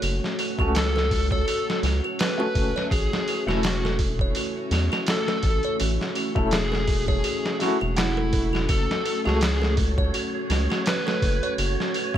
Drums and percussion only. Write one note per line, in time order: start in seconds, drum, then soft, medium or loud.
0.02 open hi-hat medium
0.24 snare soft
0.39 open hi-hat medium
0.59 kick medium
0.75 snare loud
0.75 open hi-hat medium
0.97 snare soft
1.11 kick medium
1.11 open hi-hat medium
1.31 kick loud
1.48 open hi-hat medium
1.70 snare medium
1.83 snare soft
1.83 open hi-hat medium
2.19 snare loud
2.19 open hi-hat medium
2.55 kick loud
2.55 open hi-hat medium
2.77 snare soft
2.91 kick loud
2.91 open hi-hat medium
3.13 snare medium
3.28 open hi-hat medium
3.49 snare soft
3.63 snare loud
3.63 open hi-hat medium
3.85 snare soft
3.99 kick medium
3.99 open hi-hat medium
4.19 kick loud
4.35 open hi-hat medium
4.71 snare medium
4.71 open hi-hat medium
4.93 snare soft
5.07 snare loud
5.07 open hi-hat medium
5.28 snare medium
5.43 kick loud
5.43 open hi-hat medium
5.63 closed hi-hat soft
5.80 open hi-hat medium
6.01 snare soft
6.15 open hi-hat medium
6.36 kick medium
6.51 snare loud
6.51 open hi-hat medium
6.73 snare soft
6.88 kick loud
6.88 open hi-hat medium
7.08 kick loud
7.24 open hi-hat medium
7.46 snare medium
7.60 snare soft
7.60 open hi-hat medium
7.96 snare loud
7.96 open hi-hat medium
8.33 kick medium
8.33 open hi-hat medium
8.55 snare soft
8.69 kick loud
8.69 open hi-hat medium
8.91 snare medium
9.06 open hi-hat medium
9.27 snare soft
9.41 snare loud
9.41 open hi-hat medium
9.63 snare soft
9.77 kick loud
9.77 open hi-hat medium
9.98 kick loud
10.14 open hi-hat medium
10.50 snare medium
10.50 open hi-hat medium
10.72 snare medium
10.86 snare loud
10.86 open hi-hat medium
11.08 snare medium
11.22 kick loud
11.22 open hi-hat medium
11.43 closed hi-hat soft
11.58 open hi-hat medium
11.80 snare soft
11.94 open hi-hat medium
12.14 kick medium